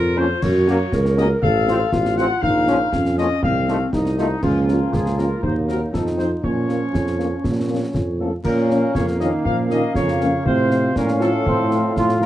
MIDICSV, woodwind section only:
0, 0, Header, 1, 2, 480
1, 0, Start_track
1, 0, Key_signature, -5, "minor"
1, 0, Tempo, 501672
1, 405, Time_signature, 2, 2, 24, 8
1, 11728, End_track
2, 0, Start_track
2, 0, Title_t, "Woodwind section"
2, 0, Program_c, 0, 71
2, 0, Note_on_c, 0, 65, 78
2, 403, Note_off_c, 0, 65, 0
2, 406, Note_on_c, 0, 66, 68
2, 851, Note_off_c, 0, 66, 0
2, 889, Note_on_c, 0, 70, 76
2, 1366, Note_off_c, 0, 70, 0
2, 1366, Note_on_c, 0, 69, 78
2, 1810, Note_off_c, 0, 69, 0
2, 1839, Note_on_c, 0, 65, 66
2, 2286, Note_off_c, 0, 65, 0
2, 2310, Note_on_c, 0, 63, 65
2, 2762, Note_off_c, 0, 63, 0
2, 2796, Note_on_c, 0, 61, 59
2, 3245, Note_off_c, 0, 61, 0
2, 3278, Note_on_c, 0, 60, 63
2, 3726, Note_off_c, 0, 60, 0
2, 3755, Note_on_c, 0, 63, 58
2, 4204, Note_off_c, 0, 63, 0
2, 4226, Note_on_c, 0, 61, 60
2, 4678, Note_off_c, 0, 61, 0
2, 4716, Note_on_c, 0, 65, 58
2, 5164, Note_off_c, 0, 65, 0
2, 5192, Note_on_c, 0, 63, 56
2, 5642, Note_off_c, 0, 63, 0
2, 5673, Note_on_c, 0, 60, 47
2, 6012, Note_off_c, 0, 60, 0
2, 6157, Note_on_c, 0, 61, 54
2, 7800, Note_off_c, 0, 61, 0
2, 8081, Note_on_c, 0, 61, 54
2, 8082, Note_on_c, 0, 77, 59
2, 9962, Note_off_c, 0, 61, 0
2, 9963, Note_off_c, 0, 77, 0
2, 10009, Note_on_c, 0, 65, 64
2, 10009, Note_on_c, 0, 77, 61
2, 11728, Note_off_c, 0, 65, 0
2, 11728, Note_off_c, 0, 77, 0
2, 11728, End_track
0, 0, End_of_file